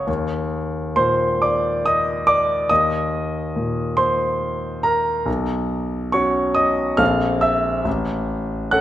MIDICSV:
0, 0, Header, 1, 2, 480
1, 0, Start_track
1, 0, Tempo, 888889
1, 42, Time_signature, 3, 2, 24, 8
1, 1002, Tempo, 858369
1, 4890, End_track
2, 0, Start_track
2, 0, Title_t, "Grand piano"
2, 0, Program_c, 0, 0
2, 0, Control_c, 0, 64, 127
2, 0, Note_on_c, 0, 37, 42
2, 0, Note_on_c, 0, 73, 54
2, 38, Note_on_c, 0, 39, 52
2, 51, Control_c, 0, 64, 0
2, 55, Note_off_c, 0, 37, 0
2, 55, Note_off_c, 0, 73, 0
2, 138, Control_c, 0, 64, 127
2, 518, Note_on_c, 0, 84, 77
2, 520, Note_on_c, 0, 46, 40
2, 523, Note_on_c, 0, 72, 64
2, 748, Note_off_c, 0, 72, 0
2, 762, Note_off_c, 0, 84, 0
2, 765, Note_on_c, 0, 86, 63
2, 769, Note_on_c, 0, 74, 51
2, 987, Note_off_c, 0, 74, 0
2, 1001, Note_off_c, 0, 86, 0
2, 1002, Note_on_c, 0, 87, 84
2, 1011, Note_on_c, 0, 75, 56
2, 1228, Note_off_c, 0, 75, 0
2, 1233, Note_on_c, 0, 86, 87
2, 1240, Note_off_c, 0, 87, 0
2, 1241, Note_on_c, 0, 74, 61
2, 1450, Note_off_c, 0, 39, 0
2, 1458, Note_off_c, 0, 74, 0
2, 1471, Note_off_c, 0, 86, 0
2, 1471, Note_on_c, 0, 87, 84
2, 1473, Note_off_c, 0, 46, 0
2, 1476, Note_on_c, 0, 39, 47
2, 1478, Note_on_c, 0, 75, 56
2, 1484, Control_c, 0, 64, 0
2, 1578, Control_c, 0, 64, 127
2, 1956, Note_on_c, 0, 46, 40
2, 2171, Note_off_c, 0, 75, 0
2, 2183, Note_on_c, 0, 84, 81
2, 2188, Note_on_c, 0, 72, 56
2, 2190, Note_off_c, 0, 87, 0
2, 2651, Note_off_c, 0, 72, 0
2, 2667, Note_on_c, 0, 82, 74
2, 2671, Note_off_c, 0, 84, 0
2, 2673, Note_on_c, 0, 70, 56
2, 2894, Note_off_c, 0, 39, 0
2, 2897, Note_off_c, 0, 70, 0
2, 2904, Note_on_c, 0, 35, 54
2, 2911, Note_off_c, 0, 82, 0
2, 2918, Note_off_c, 0, 46, 0
2, 2922, Control_c, 0, 64, 0
2, 3006, Control_c, 0, 64, 127
2, 3389, Note_on_c, 0, 85, 82
2, 3395, Note_on_c, 0, 61, 43
2, 3396, Note_on_c, 0, 66, 48
2, 3396, Note_on_c, 0, 73, 59
2, 3620, Note_off_c, 0, 73, 0
2, 3625, Note_on_c, 0, 87, 78
2, 3630, Note_on_c, 0, 75, 58
2, 3633, Note_off_c, 0, 85, 0
2, 3852, Note_off_c, 0, 35, 0
2, 3857, Note_off_c, 0, 61, 0
2, 3858, Note_off_c, 0, 66, 0
2, 3859, Note_off_c, 0, 75, 0
2, 3863, Note_on_c, 0, 89, 85
2, 3867, Note_on_c, 0, 34, 57
2, 3867, Note_on_c, 0, 69, 38
2, 3869, Note_on_c, 0, 60, 43
2, 3872, Note_on_c, 0, 77, 67
2, 3874, Note_off_c, 0, 87, 0
2, 3890, Control_c, 0, 64, 0
2, 3982, Control_c, 0, 64, 127
2, 4100, Note_off_c, 0, 77, 0
2, 4109, Note_on_c, 0, 88, 78
2, 4113, Note_off_c, 0, 89, 0
2, 4116, Note_on_c, 0, 76, 60
2, 4332, Note_off_c, 0, 69, 0
2, 4333, Note_off_c, 0, 60, 0
2, 4340, Note_off_c, 0, 34, 0
2, 4341, Note_off_c, 0, 76, 0
2, 4353, Note_on_c, 0, 33, 57
2, 4354, Note_off_c, 0, 88, 0
2, 4371, Control_c, 0, 64, 0
2, 4454, Control_c, 0, 64, 127
2, 4837, Note_on_c, 0, 90, 83
2, 4842, Note_on_c, 0, 61, 46
2, 4843, Note_on_c, 0, 78, 62
2, 4846, Note_on_c, 0, 69, 49
2, 4890, Note_off_c, 0, 33, 0
2, 4890, Note_off_c, 0, 61, 0
2, 4890, Note_off_c, 0, 69, 0
2, 4890, Note_off_c, 0, 78, 0
2, 4890, Note_off_c, 0, 90, 0
2, 4890, End_track
0, 0, End_of_file